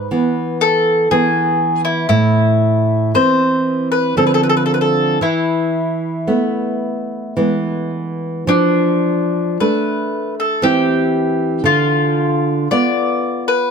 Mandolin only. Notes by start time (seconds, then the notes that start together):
Already playing: B4
0.61 A4
1.11 G#4
1.85 E4
2.09 E4
3.15 C5
3.92 B4
4.17 A4
4.27 B4
4.34 A4
4.43 B4
4.50 A4
4.57 B4
4.66 A4
4.74 B4
4.81 A4
5.22 E4
8.49 D4
9.60 B4
10.40 A4
10.63 G4
11.66 F4
12.71 D5
13.48 B4